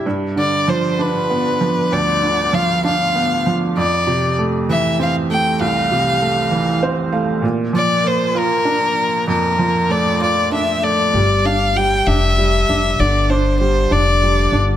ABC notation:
X:1
M:6/8
L:1/8
Q:3/8=65
K:Gmix
V:1 name="Violin"
z d c B3 | d2 f f2 z | d2 z e f g | f4 z2 |
z d c _B3 | _B2 d d e d- | d f g e3 | d c c d2 z |]
V:2 name="Upright piano"
G,, D, F, D B, F, | D,, D, F, D B, F, | F,, C, A, E, C A, | C,, C, A, E, [Cc] [A,f] |
_B,, F, _B, F D2 | F,, F, A, F D A, | G, D G, D G, D | D, D G, D G, D |]
V:3 name="Upright bass" clef=bass
z6 | z6 | z6 | z6 |
z6 | z6 | G,,,3 F,,,2 F,,, | G,,,3 F,,,2 G,,, |]